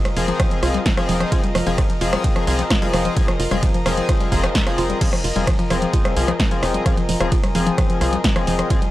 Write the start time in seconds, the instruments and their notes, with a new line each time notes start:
Already playing: string section F4 A#4 D#5 F5
0.05 synth arpeggio sound G3, cross-stick, closed hi-hat
0.17 analog synth bass F1, analog polysynth F3 C4 G#4, synth arpeggio sound F3, open hi-hat
0.28 synth arpeggio sound F3, closed hi-hat
0.40 synth arpeggio sound F3, kick, cross-stick, closed hi-hat, ride
0.51 synth arpeggio sound F3, closed hi-hat
0.63 analog synth bass C2, analog polysynth F3 C4 G#4, synth arpeggio sound F4, cross-stick, open hi-hat
0.74 synth arpeggio sound G3, closed hi-hat
0.86 synth arpeggio sound F3, kick, snare, closed hi-hat, ride
0.97 analog polysynth F3 C4 G#4, synth arpeggio sound F3, cross-stick, closed hi-hat
1.09 analog synth bass F1, synth arpeggio sound F3, open hi-hat
1.20 synth arpeggio sound F3, cross-stick, closed hi-hat
1.32 analog polysynth F3 C4 G#4, synth arpeggio sound F4, kick, closed hi-hat, ride
1.44 synth arpeggio sound G3, closed hi-hat
1.55 analog synth bass F1, synth arpeggio sound F3, cross-stick, open hi-hat
1.67 analog synth bass F1, analog polysynth F3 C4 G#4, synth arpeggio sound F3, closed hi-hat
1.78 synth arpeggio sound F3, kick, cross-stick, closed hi-hat, ride
1.90 synth arpeggio sound F3, closed hi-hat
2.01 analog synth bass F1, analog polysynth F3 C4 G#4, synth arpeggio sound F4, open hi-hat
2.13 synth arpeggio sound G3, cross-stick, closed hi-hat
2.24 synth arpeggio sound F3, kick, closed hi-hat, ride
2.36 synth arpeggio sound F3, cross-stick, closed hi-hat
2.47 analog synth bass C2, analog polysynth F3 C4 G#4, synth arpeggio sound F3, open hi-hat
2.59 synth arpeggio sound F3, closed hi-hat
2.70 synth arpeggio sound F4, kick, cross-stick, snare, closed hi-hat, ride
2.82 analog polysynth F3 C4 G#4, synth arpeggio sound G3, closed hi-hat
2.94 analog synth bass F1, synth arpeggio sound F3, cross-stick, open hi-hat
3.05 synth arpeggio sound F3, closed hi-hat
3.17 analog polysynth F3 C4 G#4, synth arpeggio sound F3, kick, closed hi-hat, ride
3.28 synth arpeggio sound F3, cross-stick, closed hi-hat
3.40 analog synth bass F1, synth arpeggio sound F4, open hi-hat
3.51 analog synth bass F1, analog polysynth F3 C4 G#4, synth arpeggio sound G3, cross-stick, closed hi-hat
3.63 synth arpeggio sound F3, kick, closed hi-hat, ride
3.74 synth arpeggio sound F3, closed hi-hat
3.86 analog synth bass F1, analog polysynth F3 C4 G#4, synth arpeggio sound F3, cross-stick, open hi-hat
3.97 synth arpeggio sound F3, closed hi-hat
4.09 synth arpeggio sound F4, kick, cross-stick, closed hi-hat, ride
4.21 synth arpeggio sound G3, closed hi-hat
4.32 analog synth bass F1, synth arpeggio sound F3, analog polysynth F3 C4 G#4, kick, open hi-hat
4.44 synth arpeggio sound F3, cross-stick, closed hi-hat
4.55 synth arpeggio sound F3, kick, snare, closed hi-hat, ride
4.67 synth arpeggio sound F3, analog polysynth F3 C4 G#4, cross-stick, closed hi-hat
4.78 analog synth bass F1, synth arpeggio sound F4, open hi-hat
4.90 synth arpeggio sound G3, closed hi-hat
5.01 analog polysynth F3 C4 G#4, synth arpeggio sound F3, kick, closed hi-hat, crash, ride
5.13 synth arpeggio sound F3, cross-stick, closed hi-hat
5.24 analog synth bass F1, synth arpeggio sound F4, open hi-hat
5.36 analog synth bass F1, analog polysynth F3 C4 G#4, synth arpeggio sound G3, closed hi-hat
5.47 synth arpeggio sound F3, kick, cross-stick, closed hi-hat, ride
5.59 synth arpeggio sound F3, closed hi-hat
5.70 analog synth bass F1, synth arpeggio sound F3, analog polysynth F3 C4 G#4, cross-stick, open hi-hat
5.82 synth arpeggio sound F3, closed hi-hat
5.93 synth arpeggio sound F4, kick, closed hi-hat, ride
6.05 synth arpeggio sound G3, cross-stick, closed hi-hat
6.17 analog synth bass C2, synth arpeggio sound F3, analog polysynth F3 C4 G#4, open hi-hat
6.23 string section G#5
6.28 synth arpeggio sound F3, cross-stick, closed hi-hat
6.40 synth arpeggio sound F3, kick, snare, closed hi-hat, ride
6.51 synth arpeggio sound F3, analog polysynth F3 C4 G#4, closed hi-hat
6.63 analog synth bass F1, synth arpeggio sound F4, cross-stick, open hi-hat
6.74 synth arpeggio sound G3, closed hi-hat
6.86 synth arpeggio sound F3, analog polysynth F3 C4 G#4, kick, cross-stick, closed hi-hat, ride
6.97 synth arpeggio sound F3, closed hi-hat
7.09 analog synth bass F1, synth arpeggio sound F3, open hi-hat
7.20 analog synth bass F1, synth arpeggio sound F3, analog polysynth F3 C4 G#4, cross-stick, closed hi-hat
7.32 synth arpeggio sound F4, kick, closed hi-hat, ride
7.44 synth arpeggio sound G3, cross-stick, closed hi-hat
7.55 analog synth bass F1, synth arpeggio sound F3, analog polysynth F3 C4 G#4, open hi-hat
7.67 synth arpeggio sound F3, closed hi-hat
7.78 synth arpeggio sound F3, kick, cross-stick, closed hi-hat, ride
7.90 synth arpeggio sound F3, closed hi-hat
8.01 analog synth bass C2, analog polysynth F3 C4 G#4, synth arpeggio sound F4, cross-stick, open hi-hat
8.13 synth arpeggio sound G3, closed hi-hat
8.24 synth arpeggio sound F3, kick, snare, closed hi-hat, ride
8.36 synth arpeggio sound F3, analog polysynth F3 C4 G#4, cross-stick, closed hi-hat
8.47 analog synth bass F1, synth arpeggio sound F3, open hi-hat
8.59 synth arpeggio sound F3, cross-stick, closed hi-hat
8.70 analog polysynth F3 C4 G#4, synth arpeggio sound F4, kick, closed hi-hat, ride
8.82 synth arpeggio sound G3, closed hi-hat